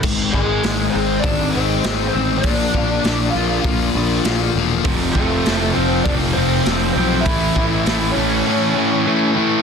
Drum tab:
CC |x-------|--------|--------|--------|
HH |--o-o-o-|o-o-o-o-|o-o-o-o-|o-o-----|
SD |--o---o-|--o---o-|--o---o-|--o-----|
BD |oo--o---|oo--o---|oo--o---|oo------|